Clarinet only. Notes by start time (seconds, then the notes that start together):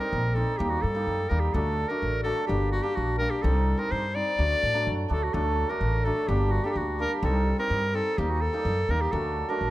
0.00 A#4
0.35 A4
0.58 G4
0.70 F#4
0.82 A4
1.29 A#4
1.40 G4
1.54 A4
1.88 A#4
2.23 A4
2.47 G4
2.72 F#4
2.82 G4
2.95 F#4
3.18 A#4
3.31 G4
3.42 A4
3.79 A#4
3.91 C5
4.15 D5
5.12 A4
5.23 F#4
5.34 A4
5.70 A#4
6.04 A4
6.28 G4
6.52 F#4
6.64 G4 A4
6.70 G4
6.77 F#4
7.01 A#4
7.13 G4
7.24 A4
7.59 A#4
7.95 A4
8.18 G4
8.30 F#4
8.41 A4
8.90 A#4
9.01 G4
9.12 A4
9.49 A#4